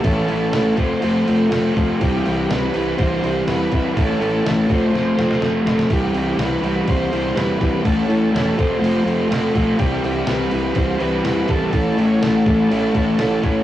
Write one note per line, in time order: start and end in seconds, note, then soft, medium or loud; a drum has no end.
0.00 0.26 A2 loud
0.00 0.27 E3 loud
0.00 0.28 A3 loud
0.00 0.48 A4 loud
0.00 crash medium
0.04 0.22 A1 loud
0.04 0.28 C#4 loud
0.04 0.79 E4 medium
0.04 0.29 E4 loud
0.04 0.79 A4 medium
0.04 0.79 C#5 medium
0.04 kick loud
0.28 0.47 A1 medium
0.28 0.51 A2 medium
0.28 0.51 E3 medium
0.28 0.52 A3 loud
0.28 0.53 C#4 loud
0.28 0.53 E4 medium
0.28 crash medium
0.49 0.76 A2 medium
0.49 0.75 E3 medium
0.49 0.77 A4 medium
0.49 crash loud
0.53 0.72 A1 medium
0.53 0.75 A3 medium
0.53 0.77 C#4 medium
0.53 0.78 E4 medium
0.53 snare loud
0.75 0.96 F1 medium
0.75 0.99 F3 loud
0.75 1.00 A3 loud
0.75 1.01 C4 loud
0.75 1.02 F4 loud
0.75 1.46 C5 medium
0.75 kick loud
0.75 crash medium
0.79 1.99 F4 medium
0.79 2.00 A4 medium
0.79 2.00 C5 medium
1.00 1.21 F1 loud
1.00 1.24 F3 medium
1.00 1.25 A3 loud
1.00 1.26 C4 loud
1.00 1.26 F4 loud
1.00 crash medium
1.25 1.46 F1 medium
1.25 1.49 F3 medium
1.25 1.50 A3 loud
1.25 1.51 C4 loud
1.25 1.51 F4 medium
1.25 crash medium
1.50 1.71 F1 loud
1.50 1.74 F3 medium
1.50 1.75 A3 loud
1.50 1.75 C4 loud
1.50 1.76 F4 loud
1.50 snare loud
1.50 crash loud
1.75 1.94 F1 loud
1.75 1.99 F3 medium
1.75 2.00 A3 medium
1.75 2.00 C4 medium
1.75 2.00 F4 loud
1.75 kick medium
1.75 crash medium
2.00 2.19 C2 loud
2.00 2.22 C3 loud
2.00 2.24 E3 loud
2.00 2.24 G3 loud
2.00 2.24 C4 loud
2.00 3.94 C4 medium
2.00 3.93 E4 medium
2.00 2.25 E4 loud
2.00 2.51 G4 medium
2.00 3.94 G4 medium
2.00 kick loud
2.00 crash medium
2.24 2.44 C2 medium
2.24 2.48 C3 loud
2.24 2.48 E3 loud
2.24 2.49 G3 medium
2.24 2.50 C4 loud
2.24 2.51 E4 loud
2.24 crash medium
2.49 2.68 C2 loud
2.49 2.71 C3 medium
2.49 2.72 E3 medium
2.49 2.73 G3 loud
2.49 2.74 C4 medium
2.49 2.75 E4 medium
2.49 2.95 B4 loud
2.49 snare loud
2.49 crash medium
2.73 2.92 C2 medium
2.73 2.96 C3 loud
2.73 2.97 E3 loud
2.73 2.98 G3 loud
2.73 2.99 C4 loud
2.73 2.99 E4 loud
2.73 crash medium
2.98 3.17 C2 loud
2.98 3.20 C3 loud
2.98 3.21 E3 loud
2.98 3.22 G3 loud
2.98 3.23 C4 loud
2.98 3.23 E4 loud
2.98 3.44 C5 loud
2.98 kick loud
2.98 crash medium
3.22 3.41 C2 medium
3.22 3.45 C3 medium
3.22 3.46 E3 loud
3.22 3.46 G3 loud
3.22 3.47 C4 loud
3.22 3.48 E4 loud
3.22 crash medium
3.46 3.65 E2 loud
3.46 3.70 C3 medium
3.46 3.70 E3 loud
3.46 3.71 G3 loud
3.46 3.72 C4 loud
3.46 3.73 E4 loud
3.46 3.93 B4 loud
3.46 snare loud
3.46 crash medium
3.71 3.90 G1 medium
3.71 3.94 C3 medium
3.71 3.93 E3 medium
3.71 3.95 G3 loud
3.71 3.96 C4 loud
3.71 3.96 E4 loud
3.71 kick medium
3.71 crash medium
3.94 4.14 A1 loud
3.94 4.18 A2 loud
3.94 4.19 E3 loud
3.94 4.19 A3 loud
3.94 4.20 C#4 loud
3.94 4.20 E4 loud
3.94 4.70 E4 medium
3.94 kick loud
3.94 crash loud
3.99 4.47 A4 loud
3.99 4.69 A4 medium
3.99 4.71 C#5 medium
4.19 4.39 A1 medium
4.19 4.43 A2 medium
4.19 4.44 E3 loud
4.19 4.45 A3 medium
4.19 4.45 C#4 medium
4.19 4.46 E4 loud
4.19 crash medium
4.45 4.63 A1 loud
4.45 4.68 A2 medium
4.45 4.67 E3 medium
4.45 4.67 A3 loud
4.45 4.69 C#4 medium
4.45 4.69 E4 loud
4.45 4.72 A4 medium
4.45 snare loud
4.45 crash medium
4.67 4.87 F1 medium
4.67 4.90 F3 loud
4.67 4.92 A3 loud
4.67 4.92 C4 loud
4.67 5.88 F4 medium
4.67 4.93 F4 loud
4.67 5.89 A4 medium
4.67 5.89 C5 medium
4.67 kick loud
4.67 crash medium
4.74 5.41 C5 loud
4.91 5.11 F1 loud
4.91 5.15 F3 loud
4.91 5.17 A3 loud
4.91 5.17 C4 loud
4.91 5.18 F4 loud
4.91 snare medium
5.16 5.35 F1 medium
5.16 5.39 F3 medium
5.16 5.40 A3 medium
5.16 5.41 C4 loud
5.16 5.41 F4 loud
5.16 snare medium
5.31 snare medium
5.41 5.59 F1 medium
5.41 5.63 F3 medium
5.41 5.64 A3 loud
5.41 5.64 C4 loud
5.41 5.66 F4 loud
5.41 snare medium
5.64 5.83 F1 loud
5.64 5.89 F3 medium
5.64 5.89 A3 medium
5.64 5.89 C4 medium
5.64 5.90 F4 medium
5.64 snare loud
5.79 snare medium
5.89 6.08 C2 medium
5.89 6.13 C3 loud
5.89 6.14 E3 loud
5.89 6.15 G3 loud
5.89 6.16 C4 loud
5.89 7.81 E4 medium
5.89 6.16 E4 loud
5.89 7.82 G4 medium
5.89 kick loud
5.89 crash medium
5.93 7.83 C4 medium
5.93 6.42 G4 medium
6.13 6.32 C2 medium
6.13 6.36 C3 medium
6.13 6.36 E3 medium
6.13 6.37 G3 medium
6.13 6.38 C4 loud
6.13 6.39 E4 loud
6.13 crash medium
6.37 6.56 C2 loud
6.37 6.59 C3 medium
6.37 6.61 E3 medium
6.37 6.61 G3 medium
6.37 6.62 C4 loud
6.37 6.62 E4 medium
6.37 6.90 B4 medium
6.37 snare loud
6.37 crash medium
6.61 6.80 C2 medium
6.61 6.84 C3 loud
6.61 6.85 E3 medium
6.61 6.85 G3 loud
6.61 6.85 C4 loud
6.61 6.86 E4 loud
6.61 crash medium
6.85 7.06 C2 medium
6.85 7.09 C3 loud
6.85 7.10 E3 loud
6.85 7.11 G3 loud
6.85 7.11 C4 loud
6.85 7.11 E4 loud
6.85 kick loud
6.85 crash medium
6.89 7.39 C5 loud
7.10 7.30 C2 medium
7.10 7.32 C3 medium
7.10 7.33 E3 loud
7.10 7.34 G3 medium
7.10 7.35 C4 medium
7.10 7.35 E4 loud
7.10 crash medium
7.26 snare soft
7.34 7.54 E2 loud
7.34 7.58 C3 medium
7.34 7.59 E3 medium
7.34 7.58 G3 medium
7.34 7.59 C4 loud
7.34 7.60 E4 medium
7.34 7.82 B4 loud
7.34 snare loud
7.34 crash medium
7.59 7.79 G#1 loud
7.59 7.82 C3 medium
7.59 7.82 E3 medium
7.59 7.83 G3 medium
7.59 7.84 C4 medium
7.59 7.84 E4 loud
7.59 kick loud
7.59 crash medium
7.82 8.03 A1 loud
7.82 8.05 A2 loud
7.82 8.05 E3 loud
7.82 8.07 A3 loud
7.82 8.07 C#4 loud
7.82 8.57 E4 medium
7.82 8.08 E4 loud
7.82 8.57 A4 medium
7.82 8.58 C#5 medium
7.82 kick loud
7.82 crash loud
7.86 8.33 A4 medium
8.06 8.27 A1 loud
8.06 8.31 A2 medium
8.06 8.31 E3 medium
8.06 8.32 A3 loud
8.06 8.33 C#4 loud
8.06 8.34 E4 loud
8.10 crash medium
8.32 8.51 E1 loud
8.32 8.56 A2 medium
8.32 8.56 E3 medium
8.32 8.56 A3 medium
8.32 8.57 C#4 loud
8.32 8.58 E4 loud
8.32 8.59 A4 medium
8.32 crash medium
8.36 snare loud
8.57 8.76 F1 medium
8.57 8.79 F3 loud
8.57 8.79 A3 loud
8.57 8.80 C4 loud
8.57 9.77 F4 medium
8.57 8.81 F4 loud
8.57 9.78 A4 medium
8.57 9.78 C5 medium
8.57 9.28 C5 medium
8.57 kick loud
8.57 crash medium
8.80 8.99 F1 loud
8.80 9.03 F3 loud
8.80 9.04 A3 loud
8.80 9.05 C4 loud
8.80 9.05 F4 loud
8.84 crash medium
9.04 9.23 F1 medium
9.04 9.27 F3 medium
9.04 9.28 A3 loud
9.04 9.29 C4 loud
9.04 9.29 F4 loud
9.04 crash medium
9.28 9.48 F1 loud
9.28 9.52 F3 medium
9.28 9.53 A3 medium
9.28 9.54 C4 loud
9.28 9.54 F4 loud
9.28 crash loud
9.32 snare loud
9.53 9.73 B1 medium
9.53 9.77 F3 medium
9.53 9.78 A3 medium
9.53 9.78 C4 medium
9.53 9.78 F4 loud
9.53 kick medium
9.53 crash medium
9.77 9.97 C2 loud
9.77 10.01 C3 loud
9.77 10.03 E3 loud
9.77 10.02 G3 loud
9.77 11.70 C4 medium
9.77 10.03 C4 loud
9.77 11.68 E4 medium
9.77 11.69 G4 medium
9.77 10.29 G4 medium
9.77 kick loud
9.77 crash medium
9.81 10.05 E4 loud
10.02 10.21 C2 medium
10.02 10.25 C3 medium
10.02 10.27 E3 medium
10.02 10.27 G3 medium
10.02 10.27 C4 medium
10.02 10.29 E4 loud
10.02 crash medium
10.26 10.46 C2 medium
10.26 10.49 C3 medium
10.26 10.50 E3 medium
10.26 10.51 G3 medium
10.26 10.51 C4 loud
10.26 10.52 E4 loud
10.26 10.78 B4 medium
10.26 snare loud
10.26 crash medium
10.50 10.70 C2 medium
10.50 10.73 C3 loud
10.50 10.75 E3 loud
10.50 10.75 G3 loud
10.50 10.75 C4 loud
10.50 10.76 E4 loud
10.50 crash medium
10.74 10.94 C2 loud
10.74 10.96 C3 loud
10.74 10.98 E3 loud
10.74 10.98 G3 loud
10.74 10.99 C4 loud
10.74 11.00 E4 loud
10.74 11.01 C5 loud
10.74 kick loud
10.74 crash medium
10.98 11.18 C2 medium
10.98 11.22 C3 medium
10.98 11.23 E3 loud
10.98 11.23 G3 medium
10.98 11.24 C4 loud
10.98 11.25 E4 loud
10.98 11.51 B4 loud
10.98 crash medium
11.23 11.42 E2 loud
11.23 11.46 C3 medium
11.23 11.47 E3 medium
11.23 11.47 G3 medium
11.23 11.48 C4 medium
11.23 11.49 E4 loud
11.23 snare loud
11.23 crash medium
11.47 11.67 G#1 medium
11.47 11.71 C3 medium
11.47 11.72 E3 medium
11.47 11.72 G3 medium
11.47 11.72 C4 medium
11.47 11.74 E4 medium
11.47 12.06 A4 loud
11.47 kick loud
11.47 crash medium
11.72 11.91 A1 loud
11.72 11.95 A2 loud
11.72 11.97 E3 loud
11.72 11.97 A3 loud
11.72 11.98 C#4 loud
11.72 12.45 E4 medium
11.72 11.99 E4 loud
11.72 kick loud
11.72 crash medium
11.76 12.46 A4 medium
11.76 12.47 C#5 medium
11.96 12.15 A1 medium
11.96 12.19 A2 medium
11.96 12.21 E3 loud
11.96 12.21 A3 medium
11.96 12.22 C#4 medium
11.96 12.22 E4 medium
11.96 crash medium
12.07 12.21 C#5 loud
12.20 12.40 A1 loud
12.20 12.44 A2 medium
12.20 12.45 E3 medium
12.20 12.45 A3 medium
12.20 12.46 C#4 medium
12.20 12.46 E4 medium
12.20 12.46 A4 loud
12.20 snare loud
12.20 crash medium
12.45 12.64 A1 loud
12.45 12.68 A2 loud
12.45 12.69 E3 loud
12.45 12.69 A3 loud
12.45 12.70 C#4 loud
12.45 13.63 E4 medium
12.45 12.71 E4 loud
12.45 13.63 A4 medium
12.45 13.40 A4 medium
12.45 13.63 C#5 medium
12.45 kick loud
12.45 crash medium
12.70 12.88 A1 medium
12.70 12.92 A2 loud
12.70 12.94 E3 loud
12.70 12.94 A3 loud
12.70 12.95 C#4 loud
12.70 12.96 E4 loud
12.70 crash medium
12.94 13.13 A1 medium
12.94 13.17 A2 medium
12.94 13.18 E3 medium
12.94 13.19 A3 loud
12.94 13.19 C#4 loud
12.94 13.20 E4 loud
12.94 kick loud
12.94 crash medium
13.18 13.36 A1 loud
13.18 13.41 A2 medium
13.18 13.42 E3 medium
13.18 13.43 A3 medium
13.18 13.43 C#4 loud
13.18 13.44 E4 loud
13.18 snare loud
13.18 crash medium
13.42 13.61 A1 loud
13.42 13.63 A2 medium
13.42 13.63 E3 medium
13.42 13.63 A3 medium
13.42 13.63 C#4 medium
13.42 13.63 E4 loud
13.42 kick medium
13.42 crash medium